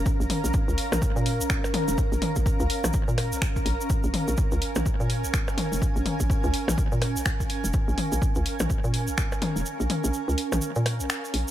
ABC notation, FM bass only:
X:1
M:4/4
L:1/16
Q:"Swing 16ths" 1/4=125
K:Bbm
V:1 name="FM bass" clef=bass
z B,,, z B,,, z D,, z B,,, z B,,2 B,,, z3 F,,, | z B,,, z B,,, z D,, z B,,, z B,,2 B,,, z2 B,,, z | z B,,, z B,,, z D,, z B,,, z B,,2 B,,, z3 F,,, | z B,,, z B,,, z D,, z B,,, z B,,2 B,,, z3 F,,, |
z B,,, z B,,, z D,, z B,,, z B,,2 B,,, z3 F,,, | z B,,, z B,,, z D,, z B,,, z B,,2 B,,, z2 B,,, z |]